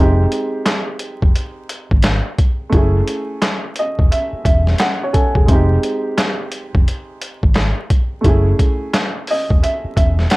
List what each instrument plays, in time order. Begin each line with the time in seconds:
Already playing: fingered electric bass F1, upright piano G#3 C4 A#4
0.00 upright piano D#4 G4
0.32 closed hi-hat
0.66 snare, clap, closed hi-hat
1.00 closed hi-hat
1.23 fingered electric bass F1, kick
1.36 closed hi-hat
1.70 closed hi-hat
1.91 fingered electric bass G#1, kick
2.03 snare, clap, closed hi-hat
2.38 kick, closed hi-hat
2.70 fingered electric bass F#1, upright piano A3 C#4, kick, closed hi-hat
2.74 upright piano E4 G#4
3.08 closed hi-hat
3.42 snare, clap, closed hi-hat
3.76 upright piano D#5, closed hi-hat
3.99 fingered electric bass E1, kick
4.11 upright piano E5, closed hi-hat
4.33 muted fingered electric bass stroke
4.45 fingered electric bass E1, upright piano E5, kick, closed hi-hat
4.67 snare
4.78 upright piano F#5, snare, clap, closed hi-hat
5.03 upright piano C#5
5.13 upright piano A4 G#5, kick, closed hi-hat
5.35 fingered electric bass E1, upright piano G#4, kick
5.46 fingered electric bass F1, upright piano G#3 C4, kick, closed hi-hat
5.51 upright piano D#4 G4
5.83 closed hi-hat
6.18 snare, clap, closed hi-hat
6.51 closed hi-hat
6.75 fingered electric bass F1, kick
6.88 closed hi-hat
7.21 closed hi-hat
7.43 fingered electric bass G#1, kick
7.54 snare, clap, closed hi-hat
7.90 kick, closed hi-hat
8.21 fingered electric bass F#1, upright piano A3 C#4, kick, closed hi-hat
8.25 upright piano E4 G#4
8.59 kick, closed hi-hat
8.94 snare, clap, closed hi-hat
9.27 upright piano D#5, open hi-hat
9.50 fingered electric bass E1, kick
9.63 upright piano E5, closed hi-hat
9.84 muted fingered electric bass stroke
9.96 fingered electric bass E1, upright piano E5, kick, closed hi-hat
10.19 snare
10.30 upright piano F#5, snare, clap, closed hi-hat